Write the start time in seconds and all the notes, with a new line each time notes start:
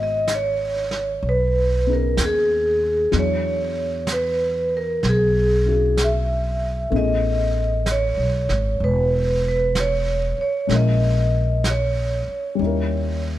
Already playing: G#1 G#3 B3 D#4 F#4
0.03 D#5
0.28 brush sweep, snare, hi-hat pedal
0.35 C#5
0.91 snare
1.23 B1, brush sweep
1.29 B4
1.87 B3 C#4 D#4 G#4
1.93 A#4
2.17 D#2, brush sweep, snare, hi-hat pedal
2.25 G#4
3.12 E2 F#3 B3 D4, brush sweep, snare
3.16 E4 G#4 C#5
4.07 brush sweep, snare, hi-hat pedal
4.12 B4
4.77 A#4
5.03 B1, brush sweep, snare
5.09 G#4
5.66 C#4 E4 F#4 G#4
5.97 brush sweep, snare, hi-hat pedal
6.04 E5
6.90 A1 A3 B3 C#4, brush sweep
6.95 E4 G#4 D#5
7.86 brush sweep, snare, hi-hat pedal
7.91 C#5
8.17 B1
8.49 G#1, snare
8.80 E1 B4, brush sweep
9.48 B4
9.75 brush sweep, snare, hi-hat pedal
9.80 C#5
10.38 C#5, muted upright bass stroke
10.67 A#1 G#3 A#3 C#4, brush sweep, snare
10.71 E4 A#4 D#5
11.64 brush sweep, snare, hi-hat pedal
11.70 C#5
12.28 muted upright bass stroke
12.55 G3 C#4, brush sweep
12.59 D#2 D#4
12.64 E4 A#4